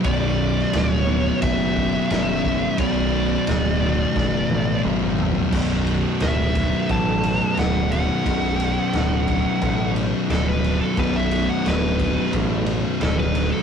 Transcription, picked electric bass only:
\new Staff \with { instrumentName = "Picked electric bass" } { \clef bass \time 4/4 \key b \minor \tempo 4 = 88 b,,,4 d,,4 fis,,4 fis,,4 | b,,,4 d,,4 fis,,8 a,,8 gis,,4 | b,,,4 d,,4 a,,4 d,,4 | b,,,4 d,,4 a,,4 d,,4 |
b,,,4 d,,4 a,,4 d,,4 | }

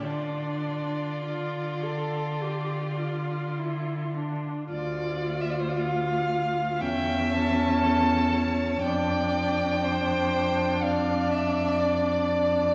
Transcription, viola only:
\new Staff \with { instrumentName = "Viola" } { \time 4/4 \key d \minor \tempo 4 = 59 d'4 f'8 a'8 g'8 f'8 e'8 d'8 | f'2 cis'2 | d'1 | }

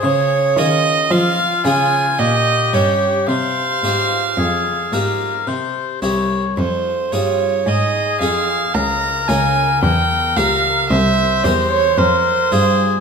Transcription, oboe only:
\new Staff \with { instrumentName = "Oboe" } { \time 3/4 \key c \phrygian \tempo 4 = 56 aes'8. r16 f'4 g'4 | c''4 aes'8 bes'8 c''8 des''8 | r4 aes'4 bes'4~ | bes'4 c''4 bes'8 aes'8 | }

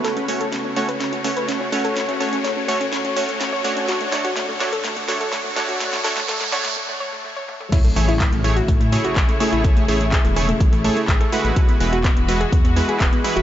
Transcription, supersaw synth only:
\new Staff \with { instrumentName = "Supersaw synth" } { \time 4/4 \key e \mixolydian \tempo 4 = 125 <a cis' fis' b'>8 <a cis' fis' cis''>8 r8 <a cis' fis' cis''>8 r8 <a cis' fis' cis''>4 <a cis' fis' cis''>8~ | <a cis' fis' cis''>8 <a cis' fis' cis''>8 r8 <a cis' fis' cis''>8 r8 <a cis' fis' cis''>4 <a d' fis' cis''>8~ | <a d' fis' cis''>8 <a d' fis' cis''>8 r8 <a d' fis' cis''>8 r8 <a d' fis' cis''>4 <a d' fis' cis''>8~ | <a d' fis' cis''>8 <a d' fis' cis''>8 r8 <a d' fis' cis''>8 r2 |
r8 <a e' gis' cis''>8 r8 <a e' gis' cis''>8 r8 <a e' gis' cis''>4 <a e' gis' cis''>8~ | <a e' gis' cis''>8 <a e' gis' cis''>8 r8 <a e' gis' cis''>8 r8 <a e' gis' cis''>4 <gis e' fis' b'>8~ | <gis e' fis' b'>8 <gis e' fis' b'>8 r8 <gis e' fis' b'>8 r8 <gis e' fis' b'>4 <gis e' fis' b'>8 | }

